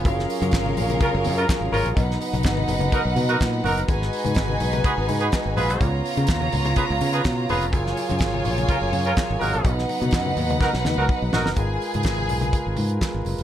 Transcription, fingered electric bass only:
X:1
M:4/4
L:1/16
Q:1/4=125
K:G#dor
V:1 name="Fingered electric bass" clef=bass
F,,,2 z F,, G,,,2 A,,,2 z F,,, F,,2 z G,,, G,,, A,,, | B,,,2 z B,,, G,,,2 F,,,2 z B,,, B,,2 A,,2 F,,,2 | G,,,2 z G,, G,,,2 B,,,2 z G,,, G,,2 z G,,, A,,, B,,, | C,,2 z C, D,,2 C,,2 z C,, C,2 B,,2 E,,,2 |
F,,,2 z F,, G,,,2 A,,,2 z F,,, F,,2 z G,,, G,,, A,,, | B,,,2 z B,, F,,2 D,,2 z B,,, D,, C,, z B,,, A,,, F,,, | G,,,2 z G,, G,,,2 B,,,2 z G,,, G,,2 z G,,, F,,, E,,, |]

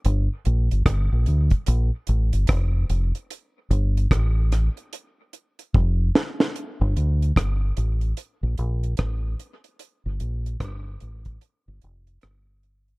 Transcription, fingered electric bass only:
X:1
M:4/4
L:1/16
Q:"Swing 16ths" 1/4=74
K:Gm
V:1 name="Fingered electric bass" clef=bass
G,,, z B,,, G,,, G,,, B,,, D,, z B,,, z A,,, G,,, F,,,2 F,,, z | z2 G,,,2 A,,,3 z4 z F,,,2 z2 | z G,,, D,,2 G,,,2 A,,,2 z B,,, B,,,2 A,,,2 z2 | z G,,, B,,,2 G,,,2 A,,,2 z G,,, F,,,2 G,,,4 |]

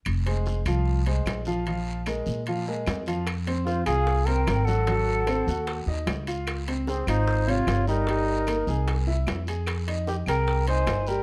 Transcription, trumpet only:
X:1
M:4/4
L:1/8
Q:1/4=150
K:Fm
V:1 name="Trumpet"
z8 | z8 | z2 F A2 B2 =A- | =A4- A z3 |
z2 C E2 F2 E- | E4- E z3 | z2 G B2 c2 B |]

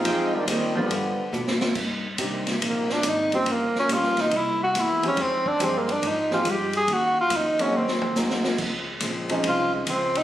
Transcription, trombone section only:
X:1
M:4/4
L:1/8
Q:"Swing" 1/4=141
K:Gphr
V:1 name="Trombone section" clef=bass
[A,CEF] [E,G,B,D] [E,G,A,C] [D,F,G,_C]3 z2 | [K:Cm] z8 | z8 | z8 |
z8 | z8 |]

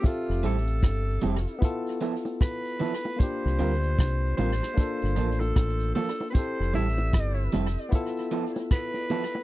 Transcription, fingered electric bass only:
X:1
M:4/4
L:1/16
Q:"Swing 16ths" 1/4=76
K:F
V:1 name="Fingered electric bass" clef=bass
z F,,, A,,,2 G,,,2 F,,, z8 z | z C,, D,,2 C,,2 A,,, z2 G,,, A,,,2 A,,,2 z2 | z F,,, A,,,2 G,,,2 F,,, z8 z |]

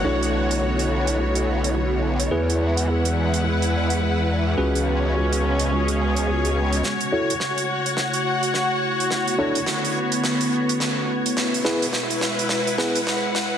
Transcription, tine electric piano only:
X:1
M:4/4
L:1/8
Q:"Swing 16ths" 1/4=106
K:F#m
V:1 name="Tine electric piano"
[DEAc]8 | [B,EGB]8 | [CFGB]8 | z [EFAc] z6 |
z [DEAc] z6 | z [B,EGB] z3 [B,EGB] z2 |]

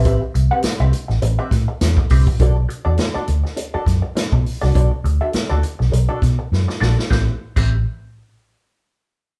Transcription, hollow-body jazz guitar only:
X:1
M:4/4
L:1/16
Q:"Swing 16ths" 1/4=102
K:Ador
V:1 name="Hollow-body jazz guitar"
[CGBe] z2 [CGBf] z [CGBe] z3 [CGBe] z4 [CGBe] z | [DFAd] z2 [DFAd] z [DFAd] z3 [DFAd] z4 z [DFAd] | [DFAd] z2 [DFAe] z [DFAd] z3 [DFAd] z4 [DFAd] z | [CGBe] z2 [CGBe] z12 |]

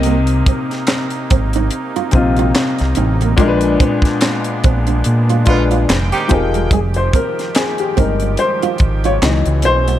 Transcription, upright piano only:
X:1
M:4/4
L:1/16
Q:"Swing 16ths" 1/4=72
K:Fm
V:1 name="Upright piano"
[C,CEB]6 z4 [C,CEF]6 | [B,,A,=DB_c]8 z2 [B,,A,Dc]2 z2 [F,EGAB]2 | A c B2 A G B2 c3 d3 c2 |]
V:2 name="Upright piano" clef=bass
z16 | z16 | z6 [G,A,E]6 [_C,_F,E]4 |]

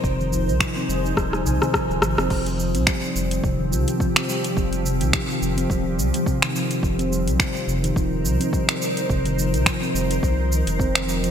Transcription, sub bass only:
X:1
M:4/4
L:1/16
Q:"Swing 16ths" 1/4=106
K:Fm
V:1 name="Sub bass" clef=bass
F,,,3 C,, z2 F,,,2 E,,,2 C,, z2 E,,, A,,, F,,, | F,,,3 C,, z2 F,,,2 E,,,2 C,, z4 z | F,,,3 C,, z2 F,,,2 E,,,2 C,, z4 z | F,,,3 C,, z2 F,,,2 E,,,2 C,, z4 z |
F,,,3 C,, z2 F,,,2 C,,3 F,,,4- F,,, |]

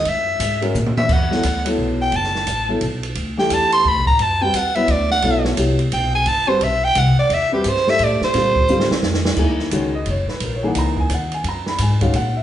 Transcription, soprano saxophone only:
X:1
M:3/4
L:1/8
Q:"Swing" 1/4=174
K:Gbmix
V:1 name="Soprano saxophone"
f3 z2 f | [K:Bphr] f3 z2 g | a3 z3 | z g a c' b ^a |
a g f e d f- | f z3 g ^g | a c e g f d | e G c e d c- |
c4 z2 | [K:Ebphr] z6 | z6 | z6 |]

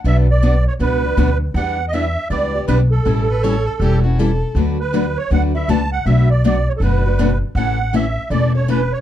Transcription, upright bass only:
X:1
M:4/4
L:1/8
Q:"Swing" 1/4=160
K:Bm
V:1 name="Upright bass" clef=bass
B,,,4 C,,2 D,,2 | E,,4 C,,2 B,,,2 | A,,,4 E,,,4 | D,,4 D,,2 C,,2 |
B,,,4 F,,,4 | A,,,4 E,,,4 |]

